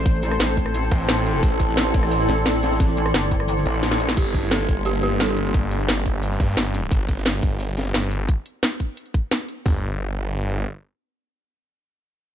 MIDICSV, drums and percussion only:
0, 0, Header, 1, 2, 480
1, 0, Start_track
1, 0, Key_signature, -2, "minor"
1, 0, Tempo, 342857
1, 80, Time_signature, 4, 2, 24, 8
1, 17280, End_track
2, 0, Start_track
2, 0, Title_t, "Drums"
2, 80, Note_on_c, 9, 42, 98
2, 81, Note_on_c, 9, 36, 116
2, 94, Note_off_c, 9, 42, 0
2, 94, Note_on_c, 9, 42, 84
2, 199, Note_off_c, 9, 42, 0
2, 199, Note_on_c, 9, 42, 41
2, 221, Note_off_c, 9, 36, 0
2, 321, Note_off_c, 9, 42, 0
2, 321, Note_on_c, 9, 42, 66
2, 323, Note_on_c, 9, 38, 34
2, 324, Note_off_c, 9, 42, 0
2, 324, Note_on_c, 9, 42, 61
2, 431, Note_off_c, 9, 42, 0
2, 431, Note_on_c, 9, 42, 68
2, 441, Note_on_c, 9, 37, 54
2, 463, Note_off_c, 9, 38, 0
2, 554, Note_off_c, 9, 42, 0
2, 554, Note_on_c, 9, 42, 91
2, 555, Note_on_c, 9, 38, 122
2, 561, Note_off_c, 9, 38, 0
2, 561, Note_off_c, 9, 42, 0
2, 561, Note_on_c, 9, 38, 121
2, 561, Note_on_c, 9, 42, 93
2, 581, Note_off_c, 9, 37, 0
2, 676, Note_off_c, 9, 38, 0
2, 676, Note_on_c, 9, 38, 41
2, 680, Note_off_c, 9, 42, 0
2, 680, Note_on_c, 9, 42, 35
2, 799, Note_off_c, 9, 42, 0
2, 799, Note_on_c, 9, 42, 72
2, 801, Note_off_c, 9, 42, 0
2, 801, Note_on_c, 9, 36, 62
2, 801, Note_on_c, 9, 42, 66
2, 816, Note_off_c, 9, 38, 0
2, 920, Note_on_c, 9, 37, 46
2, 941, Note_off_c, 9, 36, 0
2, 941, Note_off_c, 9, 42, 0
2, 1039, Note_on_c, 9, 42, 84
2, 1040, Note_off_c, 9, 42, 0
2, 1040, Note_on_c, 9, 42, 92
2, 1060, Note_off_c, 9, 37, 0
2, 1160, Note_off_c, 9, 42, 0
2, 1160, Note_on_c, 9, 42, 37
2, 1164, Note_on_c, 9, 38, 39
2, 1278, Note_on_c, 9, 46, 85
2, 1280, Note_off_c, 9, 42, 0
2, 1280, Note_on_c, 9, 36, 101
2, 1280, Note_on_c, 9, 42, 68
2, 1304, Note_off_c, 9, 38, 0
2, 1418, Note_off_c, 9, 46, 0
2, 1420, Note_off_c, 9, 36, 0
2, 1420, Note_off_c, 9, 42, 0
2, 1518, Note_on_c, 9, 38, 102
2, 1520, Note_off_c, 9, 38, 0
2, 1520, Note_on_c, 9, 38, 113
2, 1520, Note_on_c, 9, 42, 92
2, 1660, Note_off_c, 9, 38, 0
2, 1660, Note_off_c, 9, 42, 0
2, 1757, Note_on_c, 9, 42, 69
2, 1759, Note_on_c, 9, 38, 63
2, 1760, Note_off_c, 9, 42, 0
2, 1760, Note_on_c, 9, 42, 69
2, 1899, Note_off_c, 9, 38, 0
2, 1900, Note_off_c, 9, 42, 0
2, 2000, Note_on_c, 9, 36, 115
2, 2000, Note_on_c, 9, 42, 103
2, 2001, Note_off_c, 9, 42, 0
2, 2001, Note_on_c, 9, 42, 95
2, 2117, Note_off_c, 9, 42, 0
2, 2117, Note_on_c, 9, 42, 45
2, 2140, Note_off_c, 9, 36, 0
2, 2236, Note_on_c, 9, 38, 37
2, 2239, Note_off_c, 9, 42, 0
2, 2239, Note_on_c, 9, 42, 66
2, 2240, Note_off_c, 9, 42, 0
2, 2240, Note_on_c, 9, 36, 58
2, 2240, Note_on_c, 9, 42, 69
2, 2359, Note_off_c, 9, 38, 0
2, 2359, Note_on_c, 9, 38, 44
2, 2380, Note_off_c, 9, 36, 0
2, 2380, Note_off_c, 9, 42, 0
2, 2479, Note_on_c, 9, 42, 86
2, 2480, Note_off_c, 9, 38, 0
2, 2480, Note_off_c, 9, 42, 0
2, 2480, Note_on_c, 9, 38, 115
2, 2480, Note_on_c, 9, 42, 95
2, 2486, Note_off_c, 9, 38, 0
2, 2486, Note_on_c, 9, 38, 120
2, 2600, Note_off_c, 9, 38, 0
2, 2600, Note_on_c, 9, 38, 43
2, 2601, Note_off_c, 9, 42, 0
2, 2601, Note_on_c, 9, 42, 36
2, 2720, Note_on_c, 9, 36, 105
2, 2721, Note_off_c, 9, 42, 0
2, 2721, Note_on_c, 9, 42, 69
2, 2725, Note_off_c, 9, 42, 0
2, 2725, Note_on_c, 9, 42, 76
2, 2740, Note_off_c, 9, 38, 0
2, 2840, Note_on_c, 9, 37, 47
2, 2860, Note_off_c, 9, 36, 0
2, 2865, Note_off_c, 9, 42, 0
2, 2958, Note_on_c, 9, 42, 93
2, 2961, Note_off_c, 9, 42, 0
2, 2961, Note_on_c, 9, 42, 96
2, 2980, Note_off_c, 9, 37, 0
2, 3081, Note_off_c, 9, 42, 0
2, 3081, Note_on_c, 9, 42, 45
2, 3194, Note_off_c, 9, 42, 0
2, 3194, Note_on_c, 9, 42, 78
2, 3201, Note_off_c, 9, 42, 0
2, 3201, Note_on_c, 9, 42, 68
2, 3206, Note_on_c, 9, 38, 115
2, 3305, Note_off_c, 9, 38, 0
2, 3305, Note_on_c, 9, 38, 48
2, 3341, Note_off_c, 9, 42, 0
2, 3435, Note_on_c, 9, 42, 83
2, 3437, Note_off_c, 9, 38, 0
2, 3437, Note_on_c, 9, 38, 105
2, 3441, Note_off_c, 9, 38, 0
2, 3441, Note_off_c, 9, 42, 0
2, 3441, Note_on_c, 9, 38, 115
2, 3441, Note_on_c, 9, 42, 96
2, 3560, Note_off_c, 9, 38, 0
2, 3560, Note_on_c, 9, 38, 59
2, 3581, Note_off_c, 9, 42, 0
2, 3680, Note_on_c, 9, 42, 73
2, 3684, Note_off_c, 9, 38, 0
2, 3684, Note_on_c, 9, 38, 106
2, 3695, Note_off_c, 9, 42, 0
2, 3695, Note_on_c, 9, 42, 76
2, 3802, Note_off_c, 9, 38, 0
2, 3802, Note_on_c, 9, 38, 106
2, 3815, Note_off_c, 9, 42, 0
2, 3815, Note_on_c, 9, 42, 76
2, 3916, Note_off_c, 9, 42, 0
2, 3916, Note_on_c, 9, 42, 85
2, 3920, Note_on_c, 9, 36, 113
2, 3921, Note_off_c, 9, 42, 0
2, 3921, Note_on_c, 9, 42, 103
2, 3923, Note_off_c, 9, 38, 0
2, 3923, Note_on_c, 9, 38, 101
2, 4039, Note_off_c, 9, 38, 0
2, 4039, Note_on_c, 9, 38, 55
2, 4060, Note_off_c, 9, 36, 0
2, 4061, Note_off_c, 9, 42, 0
2, 4160, Note_on_c, 9, 42, 71
2, 4162, Note_off_c, 9, 42, 0
2, 4162, Note_on_c, 9, 42, 70
2, 4179, Note_off_c, 9, 38, 0
2, 4275, Note_on_c, 9, 38, 44
2, 4280, Note_on_c, 9, 37, 58
2, 4302, Note_off_c, 9, 42, 0
2, 4399, Note_on_c, 9, 42, 96
2, 4400, Note_off_c, 9, 38, 0
2, 4400, Note_off_c, 9, 42, 0
2, 4400, Note_on_c, 9, 38, 119
2, 4400, Note_on_c, 9, 42, 96
2, 4406, Note_off_c, 9, 38, 0
2, 4406, Note_on_c, 9, 38, 117
2, 4420, Note_off_c, 9, 37, 0
2, 4516, Note_off_c, 9, 38, 0
2, 4516, Note_on_c, 9, 38, 37
2, 4520, Note_off_c, 9, 42, 0
2, 4520, Note_on_c, 9, 42, 39
2, 4640, Note_off_c, 9, 42, 0
2, 4640, Note_on_c, 9, 36, 62
2, 4640, Note_on_c, 9, 42, 73
2, 4646, Note_off_c, 9, 42, 0
2, 4646, Note_on_c, 9, 42, 67
2, 4656, Note_off_c, 9, 38, 0
2, 4760, Note_on_c, 9, 37, 50
2, 4780, Note_off_c, 9, 36, 0
2, 4786, Note_off_c, 9, 42, 0
2, 4871, Note_on_c, 9, 42, 90
2, 4879, Note_off_c, 9, 42, 0
2, 4879, Note_on_c, 9, 42, 100
2, 4900, Note_off_c, 9, 37, 0
2, 4999, Note_off_c, 9, 42, 0
2, 4999, Note_on_c, 9, 42, 40
2, 5004, Note_on_c, 9, 38, 39
2, 5120, Note_off_c, 9, 42, 0
2, 5120, Note_on_c, 9, 42, 70
2, 5122, Note_on_c, 9, 46, 84
2, 5144, Note_off_c, 9, 38, 0
2, 5240, Note_off_c, 9, 42, 0
2, 5240, Note_on_c, 9, 42, 40
2, 5262, Note_off_c, 9, 46, 0
2, 5360, Note_off_c, 9, 42, 0
2, 5360, Note_on_c, 9, 38, 108
2, 5360, Note_on_c, 9, 42, 78
2, 5480, Note_off_c, 9, 38, 0
2, 5480, Note_on_c, 9, 38, 66
2, 5490, Note_off_c, 9, 38, 0
2, 5490, Note_on_c, 9, 38, 36
2, 5500, Note_off_c, 9, 42, 0
2, 5597, Note_on_c, 9, 42, 68
2, 5600, Note_off_c, 9, 42, 0
2, 5600, Note_on_c, 9, 42, 72
2, 5630, Note_off_c, 9, 38, 0
2, 5720, Note_on_c, 9, 38, 87
2, 5740, Note_off_c, 9, 42, 0
2, 5840, Note_on_c, 9, 42, 100
2, 5840, Note_on_c, 9, 49, 91
2, 5841, Note_on_c, 9, 36, 118
2, 5845, Note_off_c, 9, 42, 0
2, 5845, Note_on_c, 9, 42, 81
2, 5860, Note_off_c, 9, 38, 0
2, 5955, Note_off_c, 9, 42, 0
2, 5955, Note_on_c, 9, 42, 41
2, 5980, Note_off_c, 9, 49, 0
2, 5981, Note_off_c, 9, 36, 0
2, 6076, Note_off_c, 9, 42, 0
2, 6076, Note_on_c, 9, 42, 65
2, 6080, Note_off_c, 9, 42, 0
2, 6080, Note_on_c, 9, 42, 67
2, 6081, Note_on_c, 9, 36, 60
2, 6081, Note_on_c, 9, 38, 35
2, 6197, Note_off_c, 9, 38, 0
2, 6197, Note_on_c, 9, 38, 41
2, 6220, Note_off_c, 9, 42, 0
2, 6221, Note_off_c, 9, 36, 0
2, 6316, Note_off_c, 9, 38, 0
2, 6316, Note_on_c, 9, 38, 116
2, 6316, Note_on_c, 9, 42, 80
2, 6319, Note_off_c, 9, 38, 0
2, 6319, Note_off_c, 9, 42, 0
2, 6319, Note_on_c, 9, 38, 118
2, 6319, Note_on_c, 9, 42, 96
2, 6438, Note_off_c, 9, 38, 0
2, 6438, Note_on_c, 9, 38, 43
2, 6440, Note_off_c, 9, 42, 0
2, 6440, Note_on_c, 9, 42, 37
2, 6560, Note_off_c, 9, 42, 0
2, 6560, Note_on_c, 9, 42, 68
2, 6561, Note_on_c, 9, 36, 108
2, 6565, Note_off_c, 9, 42, 0
2, 6565, Note_on_c, 9, 42, 72
2, 6578, Note_off_c, 9, 38, 0
2, 6701, Note_off_c, 9, 36, 0
2, 6705, Note_off_c, 9, 42, 0
2, 6798, Note_on_c, 9, 42, 93
2, 6800, Note_off_c, 9, 42, 0
2, 6800, Note_on_c, 9, 42, 90
2, 6921, Note_off_c, 9, 42, 0
2, 6921, Note_on_c, 9, 42, 37
2, 6927, Note_off_c, 9, 42, 0
2, 6927, Note_on_c, 9, 42, 45
2, 7040, Note_off_c, 9, 42, 0
2, 7040, Note_on_c, 9, 42, 65
2, 7041, Note_off_c, 9, 42, 0
2, 7041, Note_on_c, 9, 42, 73
2, 7181, Note_off_c, 9, 42, 0
2, 7271, Note_on_c, 9, 42, 59
2, 7280, Note_on_c, 9, 38, 36
2, 7281, Note_off_c, 9, 38, 0
2, 7281, Note_off_c, 9, 42, 0
2, 7281, Note_on_c, 9, 38, 121
2, 7281, Note_on_c, 9, 42, 97
2, 7399, Note_off_c, 9, 42, 0
2, 7399, Note_on_c, 9, 42, 75
2, 7421, Note_off_c, 9, 38, 0
2, 7511, Note_off_c, 9, 42, 0
2, 7511, Note_on_c, 9, 42, 36
2, 7520, Note_off_c, 9, 42, 0
2, 7520, Note_on_c, 9, 42, 68
2, 7634, Note_on_c, 9, 38, 33
2, 7637, Note_off_c, 9, 42, 0
2, 7637, Note_on_c, 9, 42, 59
2, 7760, Note_off_c, 9, 42, 0
2, 7760, Note_on_c, 9, 36, 122
2, 7760, Note_on_c, 9, 42, 95
2, 7766, Note_off_c, 9, 42, 0
2, 7766, Note_on_c, 9, 42, 74
2, 7774, Note_off_c, 9, 38, 0
2, 7875, Note_off_c, 9, 42, 0
2, 7875, Note_on_c, 9, 42, 42
2, 7900, Note_off_c, 9, 36, 0
2, 7994, Note_off_c, 9, 42, 0
2, 7994, Note_on_c, 9, 42, 60
2, 7997, Note_on_c, 9, 38, 30
2, 8000, Note_off_c, 9, 42, 0
2, 8000, Note_on_c, 9, 42, 65
2, 8123, Note_off_c, 9, 42, 0
2, 8123, Note_on_c, 9, 42, 59
2, 8137, Note_off_c, 9, 38, 0
2, 8238, Note_on_c, 9, 38, 104
2, 8240, Note_off_c, 9, 38, 0
2, 8240, Note_off_c, 9, 42, 0
2, 8240, Note_on_c, 9, 38, 124
2, 8240, Note_on_c, 9, 42, 91
2, 8249, Note_off_c, 9, 42, 0
2, 8249, Note_on_c, 9, 42, 82
2, 8360, Note_off_c, 9, 42, 0
2, 8360, Note_on_c, 9, 42, 36
2, 8366, Note_off_c, 9, 38, 0
2, 8366, Note_on_c, 9, 38, 38
2, 8479, Note_off_c, 9, 42, 0
2, 8479, Note_on_c, 9, 42, 63
2, 8480, Note_on_c, 9, 36, 65
2, 8483, Note_off_c, 9, 42, 0
2, 8483, Note_on_c, 9, 42, 60
2, 8506, Note_off_c, 9, 38, 0
2, 8620, Note_off_c, 9, 36, 0
2, 8623, Note_off_c, 9, 42, 0
2, 8719, Note_on_c, 9, 42, 91
2, 8727, Note_off_c, 9, 42, 0
2, 8727, Note_on_c, 9, 42, 80
2, 8839, Note_off_c, 9, 42, 0
2, 8839, Note_on_c, 9, 42, 36
2, 8840, Note_on_c, 9, 38, 38
2, 8959, Note_off_c, 9, 42, 0
2, 8959, Note_on_c, 9, 42, 64
2, 8960, Note_on_c, 9, 36, 102
2, 8961, Note_on_c, 9, 46, 77
2, 8980, Note_off_c, 9, 38, 0
2, 9099, Note_off_c, 9, 42, 0
2, 9100, Note_off_c, 9, 36, 0
2, 9101, Note_off_c, 9, 46, 0
2, 9199, Note_on_c, 9, 38, 118
2, 9199, Note_on_c, 9, 42, 91
2, 9201, Note_off_c, 9, 42, 0
2, 9201, Note_on_c, 9, 42, 84
2, 9208, Note_off_c, 9, 38, 0
2, 9208, Note_on_c, 9, 38, 97
2, 9341, Note_off_c, 9, 42, 0
2, 9348, Note_off_c, 9, 38, 0
2, 9432, Note_on_c, 9, 42, 64
2, 9434, Note_on_c, 9, 38, 57
2, 9439, Note_off_c, 9, 42, 0
2, 9439, Note_on_c, 9, 42, 69
2, 9574, Note_off_c, 9, 38, 0
2, 9579, Note_off_c, 9, 42, 0
2, 9673, Note_on_c, 9, 42, 77
2, 9679, Note_off_c, 9, 42, 0
2, 9679, Note_on_c, 9, 42, 91
2, 9680, Note_on_c, 9, 36, 119
2, 9800, Note_off_c, 9, 42, 0
2, 9800, Note_on_c, 9, 42, 43
2, 9820, Note_off_c, 9, 36, 0
2, 9916, Note_off_c, 9, 42, 0
2, 9916, Note_on_c, 9, 42, 61
2, 9919, Note_off_c, 9, 42, 0
2, 9919, Note_on_c, 9, 42, 63
2, 9920, Note_on_c, 9, 36, 65
2, 9923, Note_on_c, 9, 38, 38
2, 10046, Note_off_c, 9, 38, 0
2, 10046, Note_on_c, 9, 38, 39
2, 10059, Note_off_c, 9, 42, 0
2, 10060, Note_off_c, 9, 36, 0
2, 10160, Note_off_c, 9, 38, 0
2, 10160, Note_on_c, 9, 38, 124
2, 10160, Note_on_c, 9, 42, 82
2, 10162, Note_off_c, 9, 38, 0
2, 10162, Note_on_c, 9, 38, 122
2, 10280, Note_off_c, 9, 42, 0
2, 10280, Note_on_c, 9, 42, 34
2, 10287, Note_off_c, 9, 38, 0
2, 10287, Note_on_c, 9, 38, 39
2, 10400, Note_off_c, 9, 42, 0
2, 10400, Note_on_c, 9, 36, 113
2, 10400, Note_on_c, 9, 42, 61
2, 10409, Note_off_c, 9, 42, 0
2, 10409, Note_on_c, 9, 42, 63
2, 10427, Note_off_c, 9, 38, 0
2, 10540, Note_off_c, 9, 36, 0
2, 10549, Note_off_c, 9, 42, 0
2, 10634, Note_on_c, 9, 42, 84
2, 10639, Note_off_c, 9, 42, 0
2, 10639, Note_on_c, 9, 42, 85
2, 10760, Note_off_c, 9, 42, 0
2, 10760, Note_on_c, 9, 42, 33
2, 10768, Note_off_c, 9, 42, 0
2, 10768, Note_on_c, 9, 42, 42
2, 10875, Note_off_c, 9, 42, 0
2, 10875, Note_on_c, 9, 42, 85
2, 10880, Note_off_c, 9, 42, 0
2, 10880, Note_on_c, 9, 42, 62
2, 10892, Note_on_c, 9, 38, 112
2, 10994, Note_off_c, 9, 38, 0
2, 10994, Note_on_c, 9, 38, 34
2, 11020, Note_off_c, 9, 42, 0
2, 11119, Note_off_c, 9, 38, 0
2, 11119, Note_on_c, 9, 38, 122
2, 11119, Note_on_c, 9, 42, 85
2, 11120, Note_off_c, 9, 42, 0
2, 11120, Note_on_c, 9, 42, 92
2, 11236, Note_off_c, 9, 38, 0
2, 11236, Note_on_c, 9, 38, 60
2, 11260, Note_off_c, 9, 42, 0
2, 11355, Note_on_c, 9, 42, 61
2, 11360, Note_off_c, 9, 42, 0
2, 11360, Note_on_c, 9, 42, 62
2, 11376, Note_off_c, 9, 38, 0
2, 11500, Note_off_c, 9, 42, 0
2, 11600, Note_on_c, 9, 42, 86
2, 11601, Note_on_c, 9, 36, 120
2, 11740, Note_off_c, 9, 42, 0
2, 11741, Note_off_c, 9, 36, 0
2, 11840, Note_on_c, 9, 42, 60
2, 11980, Note_off_c, 9, 42, 0
2, 12080, Note_on_c, 9, 38, 120
2, 12080, Note_on_c, 9, 42, 86
2, 12200, Note_off_c, 9, 42, 0
2, 12200, Note_on_c, 9, 42, 33
2, 12220, Note_off_c, 9, 38, 0
2, 12320, Note_off_c, 9, 42, 0
2, 12320, Note_on_c, 9, 42, 61
2, 12321, Note_on_c, 9, 36, 64
2, 12460, Note_off_c, 9, 42, 0
2, 12461, Note_off_c, 9, 36, 0
2, 12561, Note_on_c, 9, 42, 81
2, 12680, Note_off_c, 9, 42, 0
2, 12680, Note_on_c, 9, 42, 33
2, 12800, Note_on_c, 9, 36, 103
2, 12801, Note_off_c, 9, 42, 0
2, 12801, Note_on_c, 9, 42, 60
2, 12940, Note_off_c, 9, 36, 0
2, 12941, Note_off_c, 9, 42, 0
2, 13040, Note_on_c, 9, 38, 113
2, 13040, Note_on_c, 9, 42, 85
2, 13180, Note_off_c, 9, 38, 0
2, 13180, Note_off_c, 9, 42, 0
2, 13280, Note_on_c, 9, 42, 60
2, 13420, Note_off_c, 9, 42, 0
2, 13520, Note_on_c, 9, 36, 99
2, 13520, Note_on_c, 9, 43, 100
2, 13520, Note_on_c, 9, 46, 84
2, 13660, Note_off_c, 9, 36, 0
2, 13660, Note_off_c, 9, 43, 0
2, 13660, Note_off_c, 9, 46, 0
2, 17280, End_track
0, 0, End_of_file